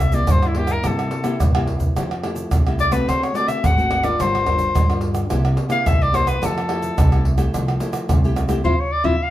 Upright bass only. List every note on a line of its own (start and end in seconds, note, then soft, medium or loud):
0.00 0.21 C2 loud
0.29 0.76 G2 loud
0.84 1.08 G2 loud
1.40 1.88 C2 loud
1.97 2.44 F2 loud
2.53 3.00 C2 loud
3.08 3.32 D2 medium
3.64 4.11 G#1 loud
4.19 4.67 G1 loud
4.75 5.22 G2 loud
5.30 5.54 C2 loud
5.86 6.34 C2 loud
6.42 6.89 F2 loud
6.98 7.45 C2 loud
7.54 7.77 C2 loud
8.10 8.57 C2 loud
8.65 8.75 F2 loud
9.05 9.16 F2 loud